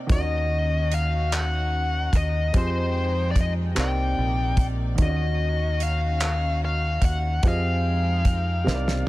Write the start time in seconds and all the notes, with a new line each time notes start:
Already playing: C3 D#4 A#4 D5
0.07 D#2 D#3 C#4 D#4 F#4, kick, closed hi-hat
0.11 C#4 D#4 F#4 D5 D#5
0.21 D#5
0.92 F5, closed hi-hat
1.32 F#5, clap, closed hi-hat
2.13 D#2 D#5, kick, closed hi-hat
2.53 F2 F3 G#3 C4 D#4 G4 G#4 D#5 G5, kick, closed hi-hat
2.58 C5
3.31 D5
3.36 kick, closed hi-hat
3.41 D#5
3.75 C2 C3 A#3 C4 D#4 A#4 D5, clap, closed hi-hat
3.80 G5
4.18 A#1
4.57 kick, closed hi-hat
4.95 D#2 D#3 C#4 D#4, kick, closed hi-hat
4.99 F#4 D5 D#5
5.10 D#5
5.80 F5, closed hi-hat
6.20 clap, closed hi-hat
6.65 F5
7.02 D#2 F#5, kick, closed hi-hat
7.43 F2 F3 G#3 C4 D#4 G4 G#4 D#5 G5, kick, closed hi-hat
7.48 F5
8.25 kick, closed hi-hat
8.64 C2 C3 A#3 C4 D#4 A#4 C5 D5, snare
8.74 D5
8.88 snare